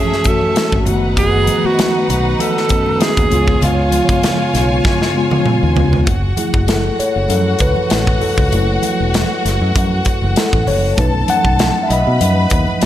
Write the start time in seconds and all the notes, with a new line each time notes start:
Already playing: E3 A3 C#4 F#4 G#4 A4 E5
0.12 snare
0.23 E3 A3 C#4 F#4, kick, closed hi-hat
0.28 A4
0.41 high conga
0.55 snare, closed hi-hat, muted conga
0.72 G#1, kick
0.84 F#1 D#3 A3 B3 D#4 F#4 B4 F#5, closed hi-hat, high conga, low conga
1.17 G#4, kick, closed hi-hat, muted conga, low conga
1.47 closed hi-hat, muted conga, high conga
1.62 D#3 A3 B3 F#4, muted fingered electric bass stroke
1.79 snare, closed hi-hat, muted conga, high conga
2.09 B1 F#4, closed hi-hat, muted conga, low conga
2.39 A4, closed hi-hat, muted conga, high conga
2.57 snare
2.69 D#3 A3 B3 C#4, kick, closed hi-hat
2.86 high conga
3.01 G#4, snare, closed hi-hat
3.17 D#2, kick, closed hi-hat
3.29 C#2 C#3 G#3 B3 F4 C#5 G#5, closed hi-hat, muted conga, high conga, low conga
3.34 F4
3.48 kick
3.61 C#2 F4, closed hi-hat, muted conga, low conga
3.92 closed hi-hat, muted conga, high conga
4.07 C#3 G#3 B3, muted fingered electric bass stroke, kick, closed hi-hat
4.11 F4
4.23 snare, closed hi-hat, high conga
4.54 B1, snare, closed hi-hat, muted conga, low conga
4.84 kick, snare, high conga
5.02 snare
5.13 C#3 G#3 B3
5.17 F4
5.31 high tom, high conga
5.46 mid tom
5.63 D#2
5.76 C#2, floor tom, high conga, low conga
5.93 floor tom
6.07 F#1 F#4 F#5, kick, closed hi-hat, muted conga, low conga
6.37 A3 E4 G#4, closed hi-hat, muted conga, high conga
6.54 F#1, kick
6.68 A4, snare, closed hi-hat, muted conga, high conga
6.99 C#5, muted fingered electric bass stroke, closed hi-hat, muted conga
7.16 F#1
7.29 F#2 A4, closed hi-hat, muted conga, high conga
7.59 C#2 B4, kick, closed hi-hat
7.76 high conga
7.90 A1, snare, closed hi-hat, muted conga
8.07 kick
8.21 A4, open hi-hat, high conga, low conga
8.38 C#2, kick
8.52 F#1 F#3 A3 E4, closed hi-hat, muted conga, low conga
8.82 closed hi-hat, high conga
9.00 E1
9.14 snare, closed hi-hat, muted conga, high conga
9.45 F#1, snare, closed hi-hat
9.61 F#2
9.75 F#2, kick, closed hi-hat, muted conga, high conga
10.05 kick, closed hi-hat, muted conga
10.22 F#1, high conga
10.36 A4, snare, closed hi-hat
10.53 A1, kick
10.67 F#1 C#5, open hi-hat, muted conga, high conga, low conga
10.97 B1 F#3 A3 C#4 D#4 A4 B4 A5, kick, closed hi-hat, muted conga, low conga
11.28 F#5, closed hi-hat, muted conga, high conga
11.45 B1, kick
11.59 snare, closed hi-hat, muted conga, high conga
11.83 E5
11.89 B1 B4 D#5 B5, closed hi-hat, muted conga
12.07 B2
12.20 F#2, closed hi-hat, muted conga, high conga
12.50 D#2, kick, closed hi-hat, muted conga
12.67 high conga
12.81 closed hi-hat, muted conga